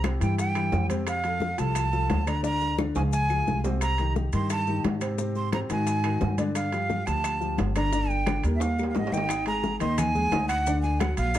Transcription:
Already playing: C2
0.03 C3 C4 C5, high bongo, high conga, high timbale, low timbale, claves, maracas
0.20 G2 E3 E4 G4 G5, high conga, high timbale, maracas
0.38 G5, high bongo, high conga, high timbale, maracas
0.55 E3 E4 G4, high bongo, high conga, high timbale, claves, maracas
0.72 F2, high bongo, low bongo, high conga, low timbale, maracas
0.89 C3 C4 C5, high bongo, high conga, high timbale, maracas
1.07 F5, high bongo, high conga, high timbale, claves, maracas
1.24 F3 F4 A4, high bongo, high conga, high timbale, maracas
1.40 high bongo, high conga, low timbale, maracas
1.58 C2 F3 F4 A4 A5, high conga, high timbale, maracas
1.75 high bongo, high conga, high timbale, claves, maracas
1.93 F3 F4 A4, high bongo, high conga, maracas
2.10 D2, high bongo, low bongo, high conga, high timbale, low timbale, maracas
2.27 D3 D4 D5 A#5, high bongo, high conga, high timbale, claves, maracas
2.43 D3 D4 D5 A#5, high bongo, high conga, maracas
2.61 high bongo, high conga, maracas
2.78 D3 D4 D5, high bongo, high conga, high timbale, claves, maracas
2.95 C#2 F3 F4 G#4 G#5, high conga, high timbale, maracas
3.12 G#5, high bongo, high conga, maracas
3.29 F3 F4 G#4, high bongo, high conga, claves, maracas
3.47 C2, high bongo, low bongo, high conga, maracas
3.64 C3 C4 C5, high bongo, high conga, low timbale, maracas
3.81 A#5, high bongo, high conga, high timbale, claves, maracas
3.98 D#3 D#4 G4, high bongo, high conga, high timbale, maracas
4.16 high bongo, high conga, low timbale, maracas
4.32 G2 D#3 D#4 G4 C6, high conga, high timbale, maracas
4.50 A5, high bongo, high conga, high timbale, claves, maracas
4.67 D#3 D#4 G4, high bongo, high conga, maracas
4.84 G#2, high bongo, low bongo, high conga, high timbale, low timbale, maracas
5.01 C3 C4 C5, high bongo, high conga, high timbale, claves, maracas
5.18 C3 C4 C5, high bongo, high conga, maracas
5.35 C6, high bongo, high conga, maracas
5.53 C3 C4 C5 A#5, high bongo, high conga, high timbale, low timbale, claves, maracas
5.70 G#2 D#3 D#4 F#4 G#5, high conga, high timbale, maracas
5.87 high bongo, high conga, high timbale, maracas
6.04 D#3 D#4 F#4, high bongo, high conga, high timbale, claves, maracas
6.21 G2, high bongo, low bongo, high conga, low timbale, maracas
6.38 D3 D4 D5, high bongo, high conga, high timbale, maracas
6.55 F5, high bongo, high conga, high timbale, claves, maracas
6.72 F3 F4 G4, high bongo, high conga, high timbale, maracas
6.90 high bongo, high conga, low timbale, maracas
7.06 D2 F3 F4 G4 A5, high conga, high timbale, maracas
7.24 high bongo, high conga, high timbale, claves, maracas
7.41 F3 F4 G4, high bongo, high conga, maracas
7.58 G1, high bongo, low bongo, high conga, high timbale, low timbale, maracas
7.76 D3 D4 D5 A#5, high bongo, high conga, high timbale, claves, maracas
7.93 D3 D4 D5, high bongo, high conga, maracas
8.10 G5, high bongo, high conga, maracas
8.27 D3 D4 D5, high bongo, high conga, high timbale, low timbale, claves, maracas
8.44 D#2 G3 G4 A#4, high conga, high timbale, maracas
8.56 E5
8.60 F5, high bongo, high conga, high timbale, maracas
8.78 G3 G4 A#4, high bongo, high conga, claves, maracas
8.83 low timbale
8.90 F5
8.95 G#1 D#5, high bongo, low bongo, high conga, low timbale, maracas
9.07 low timbale
9.12 D#3 D#4 D#5 G5, high bongo, high conga, maracas
9.17 low timbale
9.29 D#4 D#5 D#6, high bongo, high conga, high timbale, claves, maracas
9.46 G#3 G#4 G#5 A#5, high bongo, high conga, high timbale, maracas
9.63 high bongo, high conga, low timbale, maracas
9.80 D#2 D#3 D#4 D#5 C6, high conga, high timbale, maracas
9.98 G#5, high bongo, high conga, low conga, high timbale, claves, maracas
10.15 G#3 G#4 G#5, high bongo, high conga, low conga, maracas
10.32 D2 D#4 D#5 D#6, high bongo, low bongo, high conga, high timbale, low timbale, maracas
10.48 F#5, high bongo, high conga, high timbale, claves, maracas
10.66 D3 D4 D5, high bongo, high conga, maracas
10.82 G#5, high bongo, high conga, maracas
11.00 F#3 F#4 F#5, high bongo, high conga, high timbale, low timbale, claves, maracas
11.17 A#1 F5, high conga, high timbale, maracas
11.34 D4 D5, high bongo, high timbale, maracas

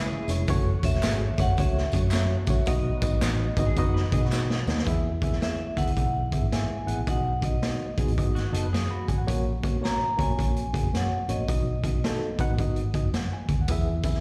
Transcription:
Already playing: C#3 E3 G#3 C#4 E4 G#4 B4 E5
0.28 F1 G#3 C#4 E4 C#5, closed hi-hat, tambourine
0.48 F#1 F#3 A3 C#4 F#4 C#5, kick, closed hi-hat, tambourine
0.83 E1 A3 C#4 F#4 C#5 E5, kick, closed hi-hat, tambourine
0.94 snare
1.03 G#1 A3 C#4 F#4 G#4, snare, clap, closed hi-hat, tambourine
1.38 F#1 A3 C#4 F#4 C#5 F#5, kick, closed hi-hat, tambourine
1.57 C#2 A3 C#4 F#4 C#5 E5, kick, closed hi-hat, tambourine
1.78 snare
1.92 F#2 A3 C#4 F#4 C#5, kick, closed hi-hat, tambourine
2.11 A3 C#4 F#4 C#5, snare, clap, closed hi-hat, tambourine
2.47 A#1 A3 C#4 F#4 C#5, kick, closed hi-hat, tambourine
2.65 B1 F#3 B3 D#4 F#4 D#5, kick, closed hi-hat, tambourine
3.01 G#1 B3 D#4 F#4 D#5, kick, closed hi-hat, tambourine
3.21 A1 B3 D#4 F#4 D#5, snare, clap, closed hi-hat, tambourine
3.57 G#1 B3 D#4 F#4 D#5, kick, closed hi-hat, tambourine
3.67 G#4
3.76 F#1 B3 D#4 F#4 D#5, kick, closed hi-hat
3.94 B4, snare
4.12 B2 B3 D#4 F#4 G#4 D#5, kick, closed hi-hat, tambourine
4.21 F#4
4.32 B3 D#4 F#4 D#5, snare, clap, tambourine
4.50 snare
4.66 D#2 B3 D#4 F#4 D#5, snare, tambourine
4.78 snare
4.86 E2 B3 E4 G#4 E5, kick, closed hi-hat
5.22 B3 E4 G#4 E5, kick, closed hi-hat
5.32 snare
5.42 B3 E4 G#4 E5, snare, closed hi-hat
5.76 D#2 B3 E4 G#4 E5 F#5, kick, closed hi-hat
5.86 C#2, closed hi-hat
5.97 B1 B3 E4 G#4 E5, kick, closed hi-hat
6.32 B3 E4 G#4 E5, kick, closed hi-hat
6.42 G#1
6.52 G#2 B3 E4 G#4 E5 G#5, snare, closed hi-hat
6.86 A1 B3 E4 G#4 F#5, closed hi-hat
6.97 A#1
7.07 B1 B3 D#4 F#4 D#5 F#5, kick, closed hi-hat
7.41 B3 D#4 F#4 D#5, kick, closed hi-hat
7.63 B3 D#4 F#4 D#5, snare, closed hi-hat
7.98 B1 B3 D#4 F#4 G#4, kick, closed hi-hat
8.07 A1, closed hi-hat
8.18 G#1 B3 D#4 F#4 D#5, kick, closed hi-hat
8.35 F#4, snare, closed hi-hat
8.52 F#1 B3 D#4 F#4 A4 D#5, closed hi-hat
8.62 B4
8.72 F#2 G#4, snare, closed hi-hat
8.90 F#4 B5
9.08 G#1 G#5, kick, closed hi-hat
9.18 A1 F#5
9.27 A#1 A#3 C#4 F#4 C#5, kick, closed hi-hat
9.63 A#3 C#4 F#4 C#5, kick, closed hi-hat
9.81 A#3 C#4 F#4 C#5 A#5, snare, closed hi-hat
10.17 C#2 A#3 C#4 F#4 C#5 G#5, kick, closed hi-hat
10.29 B1
10.37 A#1 A#3 C#4 F#4 C#5, kick, closed hi-hat
10.56 closed hi-hat
10.73 A#3 C#4 F#4 G#4, kick, closed hi-hat
10.83 F#1
10.93 F#2 A#3 C#4 F#4 C#5 F#5, snare, closed hi-hat
11.28 A1 A#3 C#4 F#4 C#5 D#5, closed hi-hat
11.38 A#1
11.48 B1 B3 D#4 F#4 D#5, kick, closed hi-hat
11.84 B3 D#4 F#4 D#5, kick, closed hi-hat
12.04 B3 D#4 F#4 A4, snare, closed hi-hat
12.39 B1 B3 D#4 F#4 F#5, kick, closed hi-hat
12.48 A1
12.58 G#1 B3 D#4 F#4 D#5, kick, closed hi-hat
12.76 closed hi-hat
12.94 B3 D#4 F#4 D#5, kick, closed hi-hat
13.04 F#1
13.13 F#2 F#5, snare, closed hi-hat
13.33 G#5
13.49 D2, kick, closed hi-hat
13.58 D#2 F#5
13.68 E2 B3 E4 G#4 E5, kick, closed hi-hat, tambourine
14.03 B3 E4 G#4 E5, kick, closed hi-hat, tambourine
14.14 snare

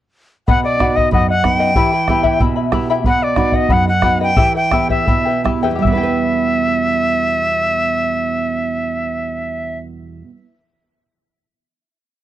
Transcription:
0.48 B2 B4 D#5 F#5, bombo low
0.63 D5 D#5 F#5
0.79 B3 D#4 F#4 B4 D#5 F#5, bombo rim, bombo low
0.95 B4 D#5 F#5, bombo low
1.11 F#2 B4 D#5 F#5, bombo low
1.28 D#5 F#5
1.43 F#3 B3 D#4 B4 D#5 F#5 G5, bombo rim, bombo low
1.59 B4 D#5 F#5
1.75 E3 E4 G4 E5 G5 B5, bombo low
1.92 E4 E5 B5
2.08 B3 E4 G4 E5 G5 B5, bombo rim, bombo low
2.23 E4 G4 E5 G5 B5, bombo low
2.39 B2 E4 E5 G5 B5, bombo low
2.56 E4 E5 B5
2.72 B3 E4 G4 E5 G5 B5, bombo rim, bombo low
2.90 E4 G4 E5 G5 B5
3.04 B2 B4 D#5 F#5, bombo low
3.22 D5 D#5 F#5
3.36 B3 D#4 F#4 B4 D#5 F#5, bombo rim, bombo low
3.52 B4 D#5 F#5, bombo low
3.69 F#2 B4 D#5 F#5, bombo low
3.85 D#5 F#5
4.02 B3 D#4 F#4 B4 D#5 F#5, bombo rim, bombo low
4.20 B4 D#5 F#5 G5
4.36 E3 E4 G4 B4 E5 G5, bombo low
4.54 E4 B4 G5
4.71 B3 E4 G4 B4 E5 G5, bombo rim, bombo low
4.89 E4 G4 B4 E5 G5, bombo low
5.06 B2 E4 B4 E5 G5, bombo low
5.25 E4 B4 G5
5.44 B3 E4 G4 B4 E5 G5, bombo rim, bombo low
5.63 E2 E4 G4 B4 E5 G5
5.71 B2
5.75 G3 G4
5.82 E5, bombo low
5.87 B3 E4
5.92 E4 B4
5.98 G5
6.03 B4

